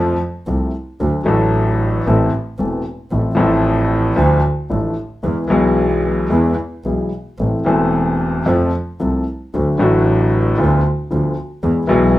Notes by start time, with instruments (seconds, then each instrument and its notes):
Already playing: grand piano F2 F3 A3 C4 A4, double bass F2
0.47 double bass C2, grand piano C2 C3 F3 A3 C4 A4
1.00 grand piano D2 D3 F#3 A3 D4 A4, double bass D2
1.24 grand piano A1 A2 F#3 A3 D4, double bass A1
1.28 grand piano A4
2.06 double bass A1, grand piano A1 A2 E3 A3 C4 A4
2.59 double bass E1, grand piano E1 E2 E3 A3 C4 A4
3.11 double bass A1, grand piano A1 A2 F3 A3 C4 A4
3.35 grand piano A1 A2 F3 A3 C4, double bass A1
3.39 grand piano A4
4.16 grand piano D2 D3 F3 A3 D4 A4, double bass D2
4.70 grand piano A1 A2 F3 A3 D4 A4, double bass A1
5.23 grand piano E2 E3 G#3 B3 G#4, double bass E2
5.48 grand piano B1 B2 E3 G#3 B3, double bass B1
5.52 grand piano G#4
6.30 grand piano E2 E3 G#3 B3 G#4, double bass E2
6.84 double bass B1, grand piano B1 B2 E3 G#3 B3 G#4
7.39 double bass A1, grand piano A1 A2 E3 A3 C4 A4
7.65 double bass E1, grand piano E1 E2 E3 A3 C4 A4
8.46 grand piano F2 F3 A3 C4 A4, double bass F2
9.00 grand piano C2 C3 F3 A3 C4 A4, double bass C2
9.54 grand piano D2 D3 F#3 A3 F#4, double bass D2
9.78 grand piano A1 A2 D3 F#3 A3 F#4, double bass A1
10.57 grand piano D2 D3 F3 B3 F4, double bass D2
11.10 grand piano D2 D3 F3 B3 F4, double bass D2
11.63 grand piano E2 E3 G#3 B3 G#4, double bass E2
11.87 grand piano B1 B2 E3 G#3 B3 G#4, double bass B1